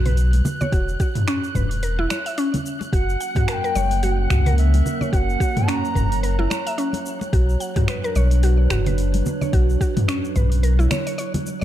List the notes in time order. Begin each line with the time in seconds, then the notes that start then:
Already playing: B1 F#6
0.06 B4, open hi-hat, low conga, shaker
0.17 open hi-hat, shaker
0.33 open hi-hat, high conga, shaker
0.45 muted conga, low conga, shaker
0.61 C#5, low conga, shaker
0.72 E1 F#4, kick, open hi-hat, shaker
0.89 shaker
1.00 F#4, kick, open hi-hat, shaker
1.15 mid tom, open hi-hat, muted conga, high conga, shaker
1.28 C#4, finger snap, open hi-hat, shaker
1.44 shaker
1.55 E1 B4, kick, mid tom, open hi-hat, high conga, shaker
1.71 open hi-hat, shaker
1.83 A#4, open hi-hat, shaker
1.99 E4, muted conga
2.10 C#5, finger snap, open hi-hat, muted conga, shaker
2.26 E5, open hi-hat, shaker
2.38 C#4, open hi-hat, shaker
2.54 open hi-hat, muted conga, high conga, low conga, shaker
2.66 shaker
2.81 muted conga, shaker
2.93 F#1 F#3 F#4 F#5, kick, open hi-hat, shaker
3.09 A#3, shaker
3.18 C#4 F#5, open hi-hat, shaker
3.35 F#4, kick, mid tom, open hi-hat, muted conga, high conga, shaker
3.48 A#4 A#5, finger snap, open hi-hat, shaker
3.52 G5
3.64 A#4, shaker
3.75 F#1 C#5, open hi-hat, high conga, shaker
3.83 A#4
3.91 open hi-hat, shaker
4.02 F#4 F#5, open hi-hat, high conga, shaker
4.11 G5
4.18 G5
4.23 F#5
4.30 C#2 F#4, finger snap, kick, mid tom, open hi-hat, shaker
4.46 A#4, open hi-hat, low conga, shaker
4.52 C#5
4.57 E5, open hi-hat, shaker
4.74 open hi-hat, high conga, shaker
4.86 muted conga, low conga, shaker
5.01 C#5, low conga, shaker
5.12 F#1 F#4 F#5 G5, kick, open hi-hat, shaker
5.30 shaker
5.40 F#4, kick, open hi-hat, shaker
5.57 mid tom, open hi-hat, muted conga, high conga, shaker
5.67 C#4 A#5, finger snap, open hi-hat, shaker
5.85 shaker
5.95 F#1 A#4, kick, mid tom, open hi-hat, high conga, shaker
6.12 open hi-hat, shaker
6.23 A#4 A#5 B5, open hi-hat, shaker
6.39 E4, muted conga
6.50 C#5, finger snap, open hi-hat, muted conga, shaker
6.67 E5, open hi-hat, shaker
6.78 C#4, open hi-hat, shaker
6.93 open hi-hat, muted conga, high conga, shaker
7.06 shaker
7.21 muted conga, shaker
7.33 B1 F#4, kick, open hi-hat, shaker
7.49 shaker
7.60 F#5, open hi-hat, shaker
7.69 D4 B4
7.76 F#4, kick, mid tom, open hi-hat, muted conga, high conga, shaker
7.88 B4, finger snap, open hi-hat, shaker
8.04 A#4, shaker
8.15 B1 C#5, open hi-hat, high conga, shaker
8.31 open hi-hat, shaker
8.43 F#4, open hi-hat, high conga, shaker
8.70 F#1 F#4, finger snap, kick, mid tom, open hi-hat, shaker
8.86 B4, open hi-hat, low conga, shaker
8.98 open hi-hat, shaker
9.14 open hi-hat, high conga, shaker
9.26 muted conga, low conga, shaker
9.41 C#5, low conga, shaker
9.53 B1 F#4, kick, open hi-hat, shaker
9.70 shaker
9.81 F#4, kick, open hi-hat, shaker
9.97 mid tom, open hi-hat, muted conga, high conga, shaker
10.08 C#4, finger snap, open hi-hat, shaker
10.25 shaker
10.36 B1 B4, kick, mid tom, open hi-hat, high conga, shaker
10.52 open hi-hat, shaker
10.63 A#4, open hi-hat, shaker
10.79 E4, muted conga, shaker
10.91 C#5, finger snap, open hi-hat, muted conga, low conga, shaker
11.07 C#5, open hi-hat, shaker
11.18 C#5, open hi-hat, shaker
11.34 open hi-hat, muted conga, high conga, low conga, shaker
11.47 shaker